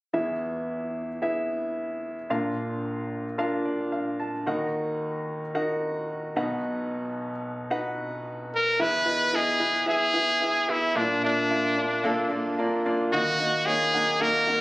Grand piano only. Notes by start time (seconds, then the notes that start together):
0.13 E2 E3 B3 E4 G#4 E5
1.22 B3 E4 G#4 E5
2.30 A#1 A#2 D4 F4 A#4 F5
3.38 D4 F4 A#4 F5
3.65 D5
3.92 F5
4.20 A5
4.46 D#2 D#3 D#4 F#4 A#4 F#5
5.55 D#4 F#4 A#4 F#5
6.36 B1 B2 D#4 F#4 B4 F#5
7.70 D#4 F#4 B4 F#5
8.79 E2 E3 B3 E4 G#4 E5
9.06 B3 E4 G#4 D#5
9.33 B3 E4 G#4 D#5
9.60 B3 E4 G#4 B4
9.86 B3 E4 G#4 E5
10.13 B3 E4 G#4 E5
10.41 B3 E4 G#4 E5
10.68 B3 E4 G#4 E5
10.95 A#1 A#2 A#3 D4 F4 D5
11.23 A#3 D4 F4 E5
11.50 A#3 D4 F4 E5
11.76 A#3 D4 F4 D5
12.04 A#3 D4 F4 A4
12.30 A#3 D4 F4 D5
12.58 A#3 D4 F4 D5 A#5
12.85 A#3 D4 F4 D5
13.12 D#2 D#3 A#3 D#4 F#4 D#5
13.39 A#3 D#4 F#4 D#5
13.66 A#3 D#4 F#4 C#5
13.94 A#3 D#4 F#4 F#5
14.20 A#3 D#4 F#4 F#5
14.46 A#3 D#4 F#4 F#5